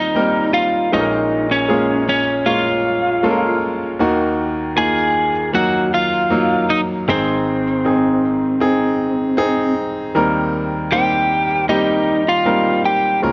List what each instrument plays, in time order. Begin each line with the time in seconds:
Already playing: grand piano D#2 D#3 G3 A#3 C4 D#4 F4 A#4, lead electric guitar D#4 D#5
0.15 grand piano G3 A#3 C4 D#4 A#4
0.53 lead electric guitar F4 F5
0.92 grand piano A#1 A#2 G#3 A#3 C#4 F4 A4, lead electric guitar D#4 D#5
1.00 grand piano A#4
1.51 lead electric guitar C#4 C#5
1.69 grand piano G#3 A#3 C#4 F4 G#4
2.09 lead electric guitar C#4 C#5
2.46 grand piano G#3 A#3 C#4 F4 C#5, lead electric guitar F4 F5
3.23 grand piano G#3 A#3 C#4 F4 A4
3.30 grand piano A#4
3.99 grand piano D#2 D#3 A#3 D#4 F#4
4.76 grand piano A#3 D#4 F4, lead electric guitar G#4 G#5
5.53 grand piano F#3 A#3 D#4, lead electric guitar F#4 F#5
5.94 lead electric guitar F4 F5
6.30 grand piano F#3 A#3 D#4
6.70 lead electric guitar D#4 D#5
7.08 grand piano G#1 G#2 C4 D#4 G#4, lead electric guitar C4 C5
7.84 grand piano C4 D#4 G#4
8.60 grand piano C4 D#4 G#4
9.37 grand piano C4 D#4 G#4
10.15 grand piano D#2 D#3 G3 A#3 C4 D#4 A#4
10.92 grand piano G3 A#3 C4 D#4 C5, lead electric guitar G4 G5
11.69 grand piano G3 A#3 C4 D#4 G4, lead electric guitar D#4 D#5
12.28 lead electric guitar F4 F5
12.45 grand piano G3 A#3 C4 D#4 A#4
12.85 lead electric guitar G4 G5
13.22 grand piano C#2 C#3 G#3 A#3 C#4 F4 A#4